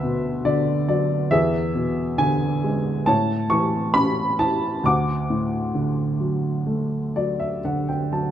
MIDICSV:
0, 0, Header, 1, 2, 480
1, 0, Start_track
1, 0, Key_signature, 2, "major"
1, 0, Tempo, 874636
1, 725, Time_signature, 4, 2, 24, 8
1, 2655, Tempo, 913242
1, 3615, Tempo, 960000
1, 4438, End_track
2, 0, Start_track
2, 0, Title_t, "Upright piano"
2, 0, Program_c, 0, 0
2, 0, Control_c, 0, 64, 127
2, 0, Note_on_c, 0, 38, 53
2, 0, Note_on_c, 0, 71, 55
2, 0, Note_on_c, 0, 76, 81
2, 18, Note_on_c, 0, 47, 53
2, 247, Note_on_c, 0, 50, 53
2, 247, Note_on_c, 0, 74, 80
2, 265, Note_off_c, 0, 76, 0
2, 477, Note_off_c, 0, 74, 0
2, 486, Note_on_c, 0, 74, 69
2, 488, Note_on_c, 0, 54, 51
2, 704, Note_off_c, 0, 38, 0
2, 705, Note_off_c, 0, 47, 0
2, 707, Note_off_c, 0, 71, 0
2, 707, Note_off_c, 0, 74, 0
2, 709, Note_off_c, 0, 50, 0
2, 718, Note_off_c, 0, 54, 0
2, 718, Note_on_c, 0, 76, 88
2, 721, Note_on_c, 0, 40, 69
2, 725, Note_on_c, 0, 68, 62
2, 733, Control_c, 0, 64, 0
2, 826, Control_c, 0, 64, 127
2, 960, Note_on_c, 0, 47, 50
2, 1180, Note_off_c, 0, 76, 0
2, 1198, Note_on_c, 0, 50, 57
2, 1198, Note_on_c, 0, 80, 79
2, 1448, Note_on_c, 0, 56, 48
2, 1665, Note_off_c, 0, 40, 0
2, 1665, Note_off_c, 0, 47, 0
2, 1667, Note_off_c, 0, 68, 0
2, 1670, Note_off_c, 0, 50, 0
2, 1680, Note_on_c, 0, 81, 86
2, 1681, Note_off_c, 0, 56, 0
2, 1685, Note_on_c, 0, 45, 55
2, 1689, Note_on_c, 0, 73, 62
2, 1696, Control_c, 0, 64, 0
2, 1699, Note_off_c, 0, 80, 0
2, 1801, Control_c, 0, 64, 127
2, 1920, Note_on_c, 0, 85, 77
2, 1928, Note_on_c, 0, 52, 53
2, 1932, Note_off_c, 0, 81, 0
2, 2147, Note_off_c, 0, 85, 0
2, 2161, Note_on_c, 0, 83, 89
2, 2162, Note_on_c, 0, 61, 49
2, 2408, Note_on_c, 0, 64, 49
2, 2410, Note_on_c, 0, 81, 81
2, 2414, Note_off_c, 0, 83, 0
2, 2634, Note_off_c, 0, 45, 0
2, 2635, Note_off_c, 0, 52, 0
2, 2636, Note_off_c, 0, 73, 0
2, 2639, Note_off_c, 0, 61, 0
2, 2649, Note_off_c, 0, 64, 0
2, 2654, Note_on_c, 0, 38, 62
2, 2663, Control_c, 0, 64, 0
2, 2664, Note_off_c, 0, 81, 0
2, 2665, Note_on_c, 0, 86, 82
2, 2666, Note_on_c, 0, 78, 56
2, 2769, Control_c, 0, 64, 127
2, 2898, Note_on_c, 0, 45, 46
2, 3132, Note_on_c, 0, 50, 48
2, 3371, Note_on_c, 0, 54, 42
2, 3615, Note_on_c, 0, 57, 39
2, 3839, Note_off_c, 0, 45, 0
2, 3857, Note_off_c, 0, 54, 0
2, 3863, Note_on_c, 0, 74, 55
2, 3865, Note_on_c, 0, 54, 46
2, 3972, Note_off_c, 0, 74, 0
2, 3981, Note_on_c, 0, 76, 51
2, 4080, Note_off_c, 0, 50, 0
2, 4083, Note_off_c, 0, 86, 0
2, 4084, Note_off_c, 0, 78, 0
2, 4092, Note_off_c, 0, 76, 0
2, 4106, Note_on_c, 0, 78, 56
2, 4107, Note_on_c, 0, 50, 42
2, 4216, Note_off_c, 0, 78, 0
2, 4225, Note_on_c, 0, 79, 46
2, 4334, Note_off_c, 0, 79, 0
2, 4337, Note_off_c, 0, 54, 0
2, 4344, Note_on_c, 0, 54, 36
2, 4345, Note_on_c, 0, 81, 47
2, 4438, Note_off_c, 0, 38, 0
2, 4438, Note_off_c, 0, 50, 0
2, 4438, Note_off_c, 0, 54, 0
2, 4438, Note_off_c, 0, 57, 0
2, 4438, Note_off_c, 0, 81, 0
2, 4438, End_track
0, 0, End_of_file